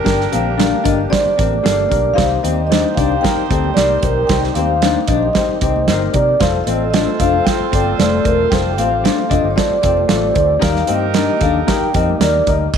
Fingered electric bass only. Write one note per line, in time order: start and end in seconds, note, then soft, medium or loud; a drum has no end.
0.06 0.26 G1 loud
0.33 0.72 A#1 medium
0.85 1.05 G1 medium
1.26 muted fingered electric bass stroke soft
1.39 1.58 A1 medium
1.66 1.85 G1 medium
1.92 2.11 B1 medium
2.18 2.38 C2 loud
2.44 2.83 D#2 medium
2.97 3.17 C2 medium
3.37 muted fingered electric bass stroke soft
3.51 3.70 D2 medium
3.76 3.96 C2 medium
4.03 4.23 B1 medium
4.29 4.49 C2 loud
4.56 4.95 D#2 medium
5.09 5.28 A#1 medium
5.49 muted fingered electric bass stroke soft
5.62 5.89 C2 medium
5.87 6.07 G1 medium
6.14 6.34 C3 medium
6.41 6.60 F1 loud
6.67 7.06 A1 medium
7.20 7.39 F1 loud
7.60 muted fingered electric bass stroke soft
7.73 7.93 G1 medium
7.99 8.18 F1 medium
8.26 8.45 E1 medium
8.52 8.78 F1 loud
8.78 9.07 A1 medium
9.31 9.41 F1 medium
9.43 9.53 G1 medium
9.70 muted fingered electric bass stroke soft
9.84 10.03 F1 medium
10.10 10.30 A1 loud
10.36 10.56 D2 medium
10.62 10.82 D#2 loud
10.89 11.28 G2 medium
11.42 11.61 D#2 medium
11.81 muted fingered electric bass stroke soft
11.95 12.14 F2 medium
12.20 12.40 D#2 medium
12.47 12.67 D2 medium